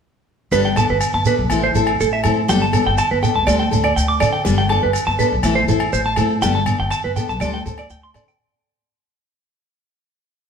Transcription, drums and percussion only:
0.52 shekere medium
0.76 low agogo medium
0.76 shekere loud
1.01 low agogo medium
1.01 shekere medium
1.25 shekere loud
1.50 low agogo medium
1.50 shekere medium
1.75 shekere loud
1.87 low agogo medium
2.00 shekere medium
2.24 low agogo medium
2.24 shekere loud
2.49 shekere medium
2.73 low agogo medium
2.73 shekere loud
2.98 low agogo medium
2.98 shekere medium
3.24 shekere loud
3.47 low agogo medium
3.47 shekere medium
3.73 shekere loud
3.84 low agogo medium
3.98 shekere medium
4.20 low agogo medium
4.20 shekere medium
4.46 shekere medium
4.69 low agogo medium
4.93 low agogo medium
4.93 shekere medium
5.19 shekere medium
5.43 low agogo medium
5.43 shekere medium
5.68 shekere medium
5.80 low agogo medium
5.93 shekere medium
6.16 low agogo medium
6.16 shekere medium
6.42 shekere medium
6.66 low agogo medium
6.66 shekere loud
6.90 low agogo medium
6.90 shekere medium
7.16 shekere loud
7.29 shekere soft
7.40 low agogo medium
7.40 shekere medium
7.67 shekere loud
7.78 low agogo medium
7.78 shekere soft
7.90 shekere medium
8.14 low agogo medium
8.14 shekere loud
8.28 shekere soft

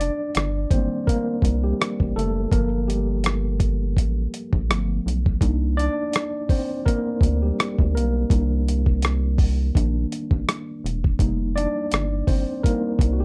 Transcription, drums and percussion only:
0.01 closed hi-hat medium
0.35 cross-stick loud
0.35 closed hi-hat medium
0.71 kick medium
0.71 closed hi-hat medium
1.08 kick medium
1.08 closed hi-hat medium
1.42 kick medium
1.42 closed hi-hat medium
1.82 cross-stick medium
1.82 closed hi-hat medium
2.00 kick medium
2.19 closed hi-hat medium
2.52 kick medium
2.52 closed hi-hat medium
2.90 closed hi-hat medium
3.24 cross-stick loud
3.24 closed hi-hat medium
3.60 kick medium
3.60 closed hi-hat medium
3.97 kick medium
3.97 closed hi-hat medium
4.34 closed hi-hat medium
4.53 kick medium
4.71 cross-stick loud
4.71 closed hi-hat medium
5.08 closed hi-hat medium
5.26 kick medium
5.41 kick medium
5.41 closed hi-hat medium
5.79 closed hi-hat medium
6.13 cross-stick loud
6.13 closed hi-hat medium
6.49 kick medium
6.49 open hi-hat soft
6.86 kick medium
6.86 closed hi-hat medium
7.21 kick medium
7.21 closed hi-hat medium
7.60 cross-stick loud
7.60 closed hi-hat medium
7.79 kick medium
7.97 closed hi-hat medium
8.30 kick medium
8.30 closed hi-hat medium
8.68 closed hi-hat medium
8.86 kick medium
9.02 cross-stick loud
9.02 closed hi-hat medium
9.38 kick medium
9.38 open hi-hat soft
9.75 kick medium
9.75 closed hi-hat medium
10.12 closed hi-hat medium
10.31 kick medium
10.49 cross-stick medium
10.49 closed hi-hat medium
10.86 closed hi-hat medium
11.04 kick medium
11.19 kick medium
11.19 closed hi-hat medium
11.58 closed hi-hat medium
11.92 cross-stick loud
11.92 closed hi-hat medium
12.27 kick medium
12.27 open hi-hat soft
12.64 kick medium
12.64 closed hi-hat medium
12.99 kick medium
12.99 closed hi-hat medium

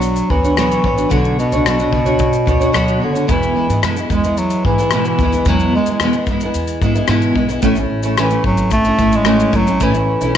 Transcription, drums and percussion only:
0.02 shaker medium
0.16 shaker soft
0.30 kick medium
0.45 shaker soft
0.57 cross-stick medium
0.57 shaker medium
0.71 shaker soft
0.84 kick medium
0.98 shaker soft
1.11 kick medium
1.11 shaker medium
1.25 shaker soft
1.39 shaker soft
1.52 shaker soft
1.66 cross-stick loud
1.66 shaker medium
1.79 shaker soft
1.93 kick medium
2.06 shaker soft
2.19 kick loud
2.19 shaker medium
2.33 shaker soft
2.47 kick medium
2.47 shaker soft
2.61 shaker soft
2.74 cross-stick medium
2.74 shaker medium
2.88 shaker soft
3.16 shaker soft
3.29 kick medium
3.29 shaker medium
3.43 shaker soft
3.70 shaker soft
3.83 cross-stick medium
3.83 shaker medium
3.97 shaker soft
4.10 kick medium
4.10 shaker soft
4.24 shaker soft
4.37 shaker medium
4.50 shaker soft
4.65 kick medium
4.79 shaker soft
4.91 cross-stick medium
4.91 shaker medium
5.05 shaker soft
5.19 kick medium
5.19 shaker soft
5.33 shaker soft
5.45 kick medium
5.45 shaker medium
5.60 shaker soft
5.86 shaker soft
6.00 cross-stick loud
6.00 shaker medium
6.13 shaker soft
6.26 kick medium
6.26 shaker soft
6.40 shaker medium
6.54 shaker medium
6.67 shaker soft
6.82 kick medium
6.82 shaker soft
6.95 shaker soft
7.08 cross-stick medium
7.08 shaker medium
7.22 shaker soft
7.36 kick medium
7.49 shaker soft
7.62 kick medium
7.62 shaker medium
7.75 shaker soft
8.03 shaker soft
8.18 cross-stick loud
8.18 shaker medium
8.31 shaker soft
8.44 kick medium
8.57 shaker soft
8.71 kick medium
8.71 shaker medium
8.84 shaker medium
8.99 kick medium
8.99 shaker soft
9.12 shaker soft
9.25 cross-stick medium
9.25 shaker medium
9.40 shaker soft
9.53 kick medium
9.53 shaker soft
9.67 shaker medium
9.80 kick medium
9.80 shaker medium
9.94 shaker soft
10.21 shaker medium

